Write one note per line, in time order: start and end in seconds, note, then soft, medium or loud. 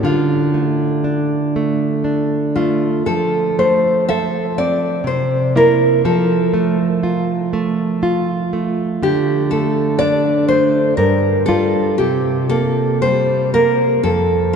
0.03 3.03 D3 soft
0.03 2.03 F4 soft
0.54 1.36 A3 soft
1.04 1.86 D4 soft
1.56 2.37 A3 soft
2.04 2.87 D4 soft
2.56 3.08 A3 soft
2.56 3.04 F4 soft
3.06 5.02 F3 soft
3.06 3.54 A4 medium
3.59 4.38 A3 soft
3.59 4.05 C5 soft
4.09 4.87 A4 soft
4.09 4.54 E5 medium
4.58 5.07 C4 soft
4.58 5.03 D5 soft
5.04 6.01 C3 soft
5.04 5.53 C5 soft
5.56 6.01 A#3 soft
5.56 6.02 E4 soft
5.56 6.03 A#4 medium
6.05 8.98 F3 soft
6.05 8.00 A4 soft
6.54 7.34 A3 soft
7.03 7.83 F4 soft
7.53 8.33 A3 soft
8.03 8.82 F4 soft
8.53 9.02 A3 soft
9.03 10.93 D3 soft
9.03 9.48 G4 medium
9.51 10.30 A3 soft
9.51 9.96 A4 soft
9.99 10.78 D4 soft
9.99 10.44 D5 medium
10.48 10.99 A3 soft
10.48 10.94 C5 medium
10.97 11.96 G2 medium
10.97 11.44 A#4 medium
11.46 11.95 G3 soft
11.46 11.95 F4 soft
11.46 11.94 A4 medium
11.98 14.00 C3 medium
11.98 12.46 G4 medium
12.49 13.32 A#3 soft
12.49 12.97 A4 medium
13.02 13.83 G3 soft
13.02 13.49 C5 medium
13.54 14.05 A#3 soft
13.54 14.01 A#4 medium
14.03 14.56 F2 medium
14.03 14.51 A4 medium